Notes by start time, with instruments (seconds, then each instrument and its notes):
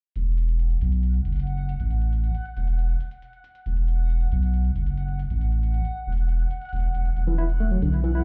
0.16 sub bass E1, synth texture F#5, closed hi-hat
0.27 closed hi-hat
0.32 closed hi-hat
0.38 closed hi-hat
0.43 closed hi-hat
0.49 closed hi-hat
0.59 closed hi-hat
0.70 closed hi-hat
0.81 sub bass B1, closed hi-hat
0.92 closed hi-hat
1.03 closed hi-hat
1.14 closed hi-hat
1.25 sub bass F#1, closed hi-hat
1.33 closed hi-hat
1.36 closed hi-hat
1.40 closed hi-hat
1.47 closed hi-hat
1.58 closed hi-hat
1.69 closed hi-hat
1.80 sub bass A1, closed hi-hat
1.91 closed hi-hat
2.02 closed hi-hat
2.13 closed hi-hat
2.24 closed hi-hat
2.35 closed hi-hat
2.46 closed hi-hat
2.57 sub bass E1, closed hi-hat
2.68 closed hi-hat
2.79 closed hi-hat
2.89 closed hi-hat
3.00 closed hi-hat
3.11 closed hi-hat
3.22 closed hi-hat
3.33 closed hi-hat
3.44 closed hi-hat
3.55 closed hi-hat
3.66 sub bass E1, closed hi-hat
3.77 closed hi-hat
3.88 closed hi-hat
4.10 closed hi-hat
4.21 closed hi-hat
4.32 sub bass B1, closed hi-hat
4.43 closed hi-hat
4.54 closed hi-hat
4.65 closed hi-hat
4.75 sub bass F#1, closed hi-hat
4.87 closed hi-hat
4.98 closed hi-hat
5.08 closed hi-hat
5.19 closed hi-hat
5.30 sub bass A1, closed hi-hat
5.41 closed hi-hat
5.52 closed hi-hat
5.63 closed hi-hat
5.74 closed hi-hat
5.85 closed hi-hat
6.07 sub bass E1
6.12 closed hi-hat
6.18 closed hi-hat
6.29 closed hi-hat
6.40 closed hi-hat
6.51 closed hi-hat
6.62 closed hi-hat
6.65 closed hi-hat
6.69 sub bass E1, closed hi-hat
6.73 closed hi-hat
6.76 closed hi-hat
6.80 closed hi-hat
6.84 closed hi-hat
6.95 sub bass E1, closed hi-hat
7.06 closed hi-hat
7.17 sub bass E1, closed hi-hat
7.27 tine electric piano E3, closed hi-hat
7.38 tine electric piano E4, closed hi-hat
7.49 closed hi-hat
7.60 tine electric piano A3, closed hi-hat
7.71 tine electric piano F#3, closed hi-hat
7.82 sub bass B1, tine electric piano D3, closed hi-hat
7.93 closed hi-hat
8.04 tine electric piano E3, closed hi-hat
8.15 tine electric piano E4, closed hi-hat